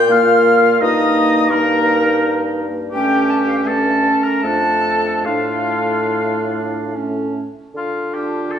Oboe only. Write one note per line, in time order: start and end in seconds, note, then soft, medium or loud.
0.10 0.83 F5 medium
0.81 1.52 D#5 loud
1.50 2.58 A#4 medium
2.92 3.69 G4 medium
3.68 4.26 A4 medium
4.24 4.46 A#4 medium
4.44 5.27 A4 medium
5.26 6.96 F4 medium
7.77 8.15 F4 medium
8.14 8.52 G4 medium
8.51 8.59 A4 medium